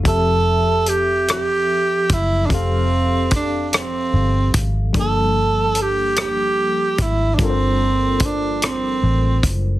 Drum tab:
HH |x-xx-x|x-xx-x|x-xx-x|x-xx-x|
SD |---r--|---r--|---r--|---r--|
BD |o----o|o-o--o|o----o|o-o--o|